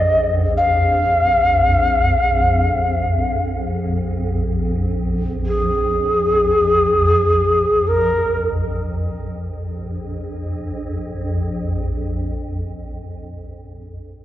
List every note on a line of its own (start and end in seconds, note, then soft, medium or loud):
0.00 8.67 A#1 medium
0.00 8.66 F2 medium
0.00 0.33 D#5 medium
0.57 3.41 F5 medium
5.46 7.89 G#4 medium
7.87 8.48 A#4 medium
8.67 13.25 A#1 medium
8.67 13.24 F2 medium